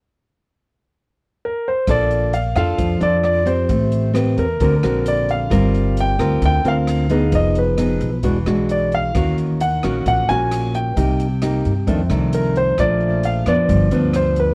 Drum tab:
HH |--------|xxxxxxxx|xxxxxxxx|xxxxxxxx|
SD |--------|r--r--r-|--r--r--|r--r--r-|
BD |--------|o---o---|o---o---|o---o---|

HH |xxxxxxxx|xxxxxxxx|xxxxxxxx|xxxxxxxx|
SD |--r--r--|r--r--r-|--r--r--|r--r--r-|
BD |o---o---|o---o---|o---o---|o---o---|